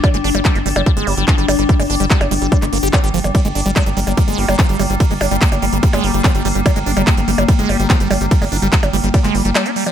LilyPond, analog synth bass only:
\new Staff \with { instrumentName = "Analog synth bass" } { \clef bass \time 4/4 \key g \phrygian \tempo 4 = 145 r16 g,,16 g,,16 g,,16 r16 g,,16 g,,16 g,,16 r16 g,,16 g,,16 g,,16 r16 g,,16 g,,16 g,,16 | r16 g,,16 g,,16 g,,16 r16 g,,16 g,,16 g,,16 r16 g,,16 g,,16 g,,16 r16 aes,,16 g,,16 g,,16 | r16 g,,16 g,,16 g,,16 r16 g,,16 g,,16 g,,16 r16 g,,16 g,,16 g,,16 r16 g,,16 g,,16 g,,16 | r16 g,,16 g,,16 g,,16 r16 g,,16 g,,16 g,,16 r16 g,,16 g,,16 g,,16 r16 g,,16 g,,16 g,,16 |
r16 g,,16 g,,16 g,,16 r16 g,,16 g,,16 g,,16 r16 g,,16 g,,16 g,,16 r16 g,,16 g,,16 g,,16 | r16 g,,16 g,,16 g,,16 r16 g,,16 g,,16 g,,16 r16 g,,16 g,,16 g,,16 r4 | }